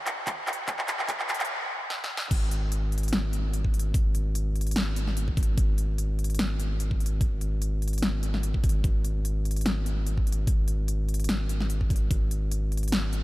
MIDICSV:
0, 0, Header, 1, 3, 480
1, 0, Start_track
1, 0, Tempo, 408163
1, 797, Time_signature, 4, 2, 24, 8
1, 15563, End_track
2, 0, Start_track
2, 0, Title_t, "Sub bass"
2, 0, Program_c, 0, 38
2, 2717, Note_on_c, 0, 32, 92
2, 6295, Note_off_c, 0, 32, 0
2, 6317, Note_on_c, 0, 32, 89
2, 10375, Note_off_c, 0, 32, 0
2, 10397, Note_on_c, 0, 32, 93
2, 14215, Note_off_c, 0, 32, 0
2, 14237, Note_on_c, 0, 32, 90
2, 15563, Note_off_c, 0, 32, 0
2, 15563, End_track
3, 0, Start_track
3, 0, Title_t, "Drums"
3, 76, Note_on_c, 9, 39, 89
3, 76, Note_on_c, 9, 42, 65
3, 194, Note_off_c, 9, 39, 0
3, 194, Note_off_c, 9, 42, 0
3, 316, Note_on_c, 9, 36, 97
3, 316, Note_on_c, 9, 39, 88
3, 316, Note_on_c, 9, 42, 75
3, 433, Note_off_c, 9, 39, 0
3, 433, Note_off_c, 9, 42, 0
3, 434, Note_off_c, 9, 36, 0
3, 556, Note_on_c, 9, 39, 89
3, 556, Note_on_c, 9, 42, 49
3, 622, Note_off_c, 9, 42, 0
3, 622, Note_on_c, 9, 42, 66
3, 674, Note_off_c, 9, 39, 0
3, 739, Note_off_c, 9, 42, 0
3, 796, Note_on_c, 9, 36, 103
3, 796, Note_on_c, 9, 39, 93
3, 796, Note_on_c, 9, 42, 77
3, 914, Note_off_c, 9, 36, 0
3, 914, Note_off_c, 9, 39, 0
3, 914, Note_off_c, 9, 42, 0
3, 927, Note_on_c, 9, 39, 83
3, 1037, Note_off_c, 9, 39, 0
3, 1037, Note_on_c, 9, 39, 98
3, 1037, Note_on_c, 9, 42, 65
3, 1154, Note_off_c, 9, 39, 0
3, 1154, Note_off_c, 9, 42, 0
3, 1167, Note_on_c, 9, 39, 80
3, 1276, Note_off_c, 9, 39, 0
3, 1276, Note_on_c, 9, 36, 100
3, 1276, Note_on_c, 9, 39, 100
3, 1276, Note_on_c, 9, 42, 72
3, 1394, Note_off_c, 9, 36, 0
3, 1394, Note_off_c, 9, 39, 0
3, 1394, Note_off_c, 9, 42, 0
3, 1407, Note_on_c, 9, 39, 85
3, 1517, Note_off_c, 9, 39, 0
3, 1517, Note_on_c, 9, 39, 98
3, 1517, Note_on_c, 9, 42, 48
3, 1582, Note_off_c, 9, 42, 0
3, 1582, Note_on_c, 9, 42, 65
3, 1634, Note_off_c, 9, 39, 0
3, 1647, Note_off_c, 9, 42, 0
3, 1647, Note_on_c, 9, 39, 91
3, 1647, Note_on_c, 9, 42, 48
3, 1702, Note_off_c, 9, 42, 0
3, 1702, Note_on_c, 9, 42, 65
3, 1765, Note_off_c, 9, 39, 0
3, 1819, Note_off_c, 9, 42, 0
3, 2236, Note_on_c, 9, 38, 72
3, 2354, Note_off_c, 9, 38, 0
3, 2396, Note_on_c, 9, 38, 79
3, 2514, Note_off_c, 9, 38, 0
3, 2557, Note_on_c, 9, 38, 107
3, 2674, Note_off_c, 9, 38, 0
3, 2716, Note_on_c, 9, 36, 118
3, 2717, Note_on_c, 9, 42, 86
3, 2717, Note_on_c, 9, 49, 107
3, 2834, Note_off_c, 9, 36, 0
3, 2835, Note_off_c, 9, 42, 0
3, 2835, Note_off_c, 9, 49, 0
3, 2957, Note_on_c, 9, 42, 69
3, 3074, Note_off_c, 9, 42, 0
3, 3196, Note_on_c, 9, 42, 81
3, 3314, Note_off_c, 9, 42, 0
3, 3436, Note_on_c, 9, 42, 55
3, 3502, Note_off_c, 9, 42, 0
3, 3502, Note_on_c, 9, 42, 71
3, 3567, Note_off_c, 9, 42, 0
3, 3567, Note_on_c, 9, 42, 54
3, 3622, Note_off_c, 9, 42, 0
3, 3622, Note_on_c, 9, 42, 72
3, 3677, Note_off_c, 9, 42, 0
3, 3677, Note_on_c, 9, 38, 124
3, 3677, Note_on_c, 9, 42, 82
3, 3795, Note_off_c, 9, 38, 0
3, 3795, Note_off_c, 9, 42, 0
3, 3917, Note_on_c, 9, 42, 70
3, 4034, Note_off_c, 9, 42, 0
3, 4157, Note_on_c, 9, 42, 88
3, 4275, Note_off_c, 9, 42, 0
3, 4287, Note_on_c, 9, 36, 61
3, 4397, Note_on_c, 9, 42, 55
3, 4404, Note_off_c, 9, 36, 0
3, 4462, Note_off_c, 9, 42, 0
3, 4462, Note_on_c, 9, 42, 74
3, 4580, Note_off_c, 9, 42, 0
3, 4637, Note_on_c, 9, 36, 127
3, 4638, Note_on_c, 9, 42, 86
3, 4754, Note_off_c, 9, 36, 0
3, 4755, Note_off_c, 9, 42, 0
3, 4877, Note_on_c, 9, 42, 69
3, 4995, Note_off_c, 9, 42, 0
3, 5117, Note_on_c, 9, 42, 81
3, 5235, Note_off_c, 9, 42, 0
3, 5358, Note_on_c, 9, 42, 51
3, 5422, Note_off_c, 9, 42, 0
3, 5422, Note_on_c, 9, 42, 66
3, 5488, Note_off_c, 9, 42, 0
3, 5488, Note_on_c, 9, 42, 49
3, 5543, Note_off_c, 9, 42, 0
3, 5543, Note_on_c, 9, 42, 66
3, 5597, Note_off_c, 9, 42, 0
3, 5597, Note_on_c, 9, 38, 127
3, 5597, Note_on_c, 9, 42, 82
3, 5715, Note_off_c, 9, 38, 0
3, 5715, Note_off_c, 9, 42, 0
3, 5837, Note_on_c, 9, 42, 67
3, 5955, Note_off_c, 9, 42, 0
3, 5967, Note_on_c, 9, 38, 40
3, 6077, Note_on_c, 9, 42, 85
3, 6085, Note_off_c, 9, 38, 0
3, 6195, Note_off_c, 9, 42, 0
3, 6207, Note_on_c, 9, 36, 68
3, 6317, Note_off_c, 9, 36, 0
3, 6317, Note_on_c, 9, 36, 110
3, 6318, Note_on_c, 9, 42, 54
3, 6383, Note_off_c, 9, 42, 0
3, 6383, Note_on_c, 9, 42, 70
3, 6435, Note_off_c, 9, 36, 0
3, 6500, Note_off_c, 9, 42, 0
3, 6557, Note_on_c, 9, 36, 127
3, 6557, Note_on_c, 9, 42, 81
3, 6675, Note_off_c, 9, 36, 0
3, 6675, Note_off_c, 9, 42, 0
3, 6797, Note_on_c, 9, 42, 69
3, 6915, Note_off_c, 9, 42, 0
3, 7037, Note_on_c, 9, 42, 76
3, 7154, Note_off_c, 9, 42, 0
3, 7277, Note_on_c, 9, 42, 52
3, 7342, Note_off_c, 9, 42, 0
3, 7342, Note_on_c, 9, 42, 68
3, 7408, Note_off_c, 9, 42, 0
3, 7408, Note_on_c, 9, 42, 50
3, 7462, Note_off_c, 9, 42, 0
3, 7462, Note_on_c, 9, 42, 66
3, 7517, Note_off_c, 9, 42, 0
3, 7517, Note_on_c, 9, 38, 127
3, 7517, Note_on_c, 9, 42, 78
3, 7634, Note_off_c, 9, 38, 0
3, 7634, Note_off_c, 9, 42, 0
3, 7757, Note_on_c, 9, 42, 67
3, 7874, Note_off_c, 9, 42, 0
3, 7997, Note_on_c, 9, 42, 78
3, 8114, Note_off_c, 9, 42, 0
3, 8127, Note_on_c, 9, 36, 69
3, 8237, Note_on_c, 9, 42, 48
3, 8244, Note_off_c, 9, 36, 0
3, 8302, Note_off_c, 9, 42, 0
3, 8302, Note_on_c, 9, 42, 68
3, 8420, Note_off_c, 9, 42, 0
3, 8477, Note_on_c, 9, 36, 127
3, 8477, Note_on_c, 9, 42, 76
3, 8594, Note_off_c, 9, 36, 0
3, 8595, Note_off_c, 9, 42, 0
3, 8717, Note_on_c, 9, 42, 65
3, 8834, Note_off_c, 9, 42, 0
3, 8957, Note_on_c, 9, 42, 78
3, 9075, Note_off_c, 9, 42, 0
3, 9198, Note_on_c, 9, 42, 50
3, 9263, Note_off_c, 9, 42, 0
3, 9263, Note_on_c, 9, 42, 63
3, 9327, Note_off_c, 9, 42, 0
3, 9327, Note_on_c, 9, 42, 49
3, 9382, Note_off_c, 9, 42, 0
3, 9382, Note_on_c, 9, 42, 64
3, 9438, Note_off_c, 9, 42, 0
3, 9438, Note_on_c, 9, 38, 123
3, 9438, Note_on_c, 9, 42, 78
3, 9555, Note_off_c, 9, 38, 0
3, 9555, Note_off_c, 9, 42, 0
3, 9678, Note_on_c, 9, 42, 65
3, 9795, Note_off_c, 9, 42, 0
3, 9808, Note_on_c, 9, 38, 40
3, 9917, Note_on_c, 9, 42, 78
3, 9925, Note_off_c, 9, 38, 0
3, 10035, Note_off_c, 9, 42, 0
3, 10047, Note_on_c, 9, 36, 69
3, 10157, Note_off_c, 9, 36, 0
3, 10157, Note_on_c, 9, 36, 111
3, 10157, Note_on_c, 9, 42, 49
3, 10223, Note_off_c, 9, 42, 0
3, 10223, Note_on_c, 9, 42, 65
3, 10274, Note_off_c, 9, 36, 0
3, 10340, Note_off_c, 9, 42, 0
3, 10397, Note_on_c, 9, 36, 123
3, 10397, Note_on_c, 9, 42, 80
3, 10514, Note_off_c, 9, 36, 0
3, 10515, Note_off_c, 9, 42, 0
3, 10638, Note_on_c, 9, 42, 63
3, 10755, Note_off_c, 9, 42, 0
3, 10877, Note_on_c, 9, 42, 78
3, 10995, Note_off_c, 9, 42, 0
3, 11118, Note_on_c, 9, 42, 49
3, 11182, Note_off_c, 9, 42, 0
3, 11182, Note_on_c, 9, 42, 67
3, 11248, Note_off_c, 9, 42, 0
3, 11248, Note_on_c, 9, 42, 50
3, 11302, Note_off_c, 9, 42, 0
3, 11302, Note_on_c, 9, 42, 65
3, 11357, Note_off_c, 9, 42, 0
3, 11357, Note_on_c, 9, 38, 127
3, 11357, Note_on_c, 9, 42, 79
3, 11475, Note_off_c, 9, 38, 0
3, 11475, Note_off_c, 9, 42, 0
3, 11597, Note_on_c, 9, 42, 64
3, 11714, Note_off_c, 9, 42, 0
3, 11837, Note_on_c, 9, 42, 78
3, 11955, Note_off_c, 9, 42, 0
3, 11967, Note_on_c, 9, 36, 62
3, 12076, Note_on_c, 9, 42, 50
3, 12084, Note_off_c, 9, 36, 0
3, 12141, Note_off_c, 9, 42, 0
3, 12141, Note_on_c, 9, 42, 67
3, 12259, Note_off_c, 9, 42, 0
3, 12316, Note_on_c, 9, 36, 117
3, 12316, Note_on_c, 9, 42, 83
3, 12434, Note_off_c, 9, 36, 0
3, 12434, Note_off_c, 9, 42, 0
3, 12556, Note_on_c, 9, 42, 66
3, 12674, Note_off_c, 9, 42, 0
3, 12796, Note_on_c, 9, 42, 82
3, 12914, Note_off_c, 9, 42, 0
3, 13037, Note_on_c, 9, 42, 50
3, 13102, Note_off_c, 9, 42, 0
3, 13102, Note_on_c, 9, 42, 68
3, 13167, Note_off_c, 9, 42, 0
3, 13167, Note_on_c, 9, 42, 53
3, 13222, Note_off_c, 9, 42, 0
3, 13222, Note_on_c, 9, 42, 70
3, 13276, Note_off_c, 9, 42, 0
3, 13276, Note_on_c, 9, 38, 121
3, 13276, Note_on_c, 9, 42, 84
3, 13394, Note_off_c, 9, 38, 0
3, 13394, Note_off_c, 9, 42, 0
3, 13517, Note_on_c, 9, 42, 68
3, 13634, Note_off_c, 9, 42, 0
3, 13647, Note_on_c, 9, 38, 37
3, 13757, Note_on_c, 9, 42, 80
3, 13765, Note_off_c, 9, 38, 0
3, 13875, Note_off_c, 9, 42, 0
3, 13887, Note_on_c, 9, 36, 61
3, 13997, Note_off_c, 9, 36, 0
3, 13997, Note_on_c, 9, 36, 106
3, 13998, Note_on_c, 9, 42, 51
3, 14063, Note_off_c, 9, 42, 0
3, 14063, Note_on_c, 9, 42, 67
3, 14115, Note_off_c, 9, 36, 0
3, 14180, Note_off_c, 9, 42, 0
3, 14237, Note_on_c, 9, 36, 117
3, 14238, Note_on_c, 9, 42, 84
3, 14355, Note_off_c, 9, 36, 0
3, 14355, Note_off_c, 9, 42, 0
3, 14478, Note_on_c, 9, 42, 71
3, 14596, Note_off_c, 9, 42, 0
3, 14718, Note_on_c, 9, 42, 82
3, 14835, Note_off_c, 9, 42, 0
3, 14958, Note_on_c, 9, 42, 55
3, 15023, Note_off_c, 9, 42, 0
3, 15023, Note_on_c, 9, 42, 67
3, 15089, Note_off_c, 9, 42, 0
3, 15089, Note_on_c, 9, 42, 52
3, 15143, Note_off_c, 9, 42, 0
3, 15143, Note_on_c, 9, 42, 67
3, 15198, Note_off_c, 9, 42, 0
3, 15198, Note_on_c, 9, 38, 117
3, 15198, Note_on_c, 9, 42, 87
3, 15316, Note_off_c, 9, 38, 0
3, 15316, Note_off_c, 9, 42, 0
3, 15438, Note_on_c, 9, 42, 70
3, 15556, Note_off_c, 9, 42, 0
3, 15563, End_track
0, 0, End_of_file